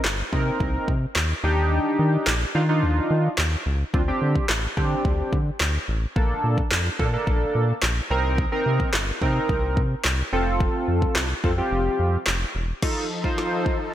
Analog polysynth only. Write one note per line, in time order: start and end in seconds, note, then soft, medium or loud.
0.32 0.92 C4 medium
0.32 0.92 D#4 medium
0.32 0.93 A#4 loud
1.43 2.33 D4 medium
1.43 2.33 D#4 medium
1.43 2.33 G4 loud
2.55 2.62 D4 medium
2.55 2.62 D#4 medium
2.55 2.63 F4 loud
2.69 3.29 D4 medium
2.69 3.29 D#4 medium
2.69 3.29 F4 loud
3.94 4.01 C4 medium
3.94 4.01 D4 medium
3.94 4.01 F4 medium
4.08 4.45 C4 medium
4.08 4.45 D4 medium
4.08 4.45 G4 loud
4.77 5.37 C4 medium
4.77 5.37 D4 medium
4.77 5.37 G4 loud
6.16 6.61 A#3 medium
6.16 6.61 D4 medium
6.16 6.61 A4 medium
6.99 7.07 A#3 medium
6.99 7.07 D4 medium
6.99 7.07 A4 loud
7.13 7.73 A#3 medium
7.13 7.73 D4 medium
7.13 7.73 A4 medium
8.10 8.44 C4 medium
8.10 8.44 D#4 medium
8.10 8.44 A#4 loud
8.52 8.89 C4 medium
8.52 8.90 D#4 medium
8.52 8.90 A#4 loud
9.22 9.81 C4 loud
9.22 9.82 D#4 medium
9.22 9.82 A#4 loud
10.33 11.22 C4 medium
10.33 11.22 F4 medium
10.33 11.22 A4 loud
11.44 11.51 C4 medium
11.44 11.51 F4 medium
11.44 11.51 A4 loud
11.58 12.17 C4 medium
11.58 12.18 F4 medium
11.58 12.18 G4 loud
12.82 13.05 D#4 medium
12.82 13.05 F4 medium
12.82 13.05 A4 medium
13.24 13.77 D#4 medium
13.24 13.77 F4 medium
13.24 13.77 C5 medium